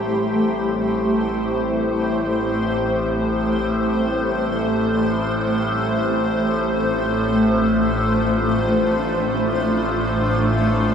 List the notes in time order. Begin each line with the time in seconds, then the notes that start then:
Already playing: A1 A2 G3 A3 E4 G4 C5
5.74 F4
6.20 D4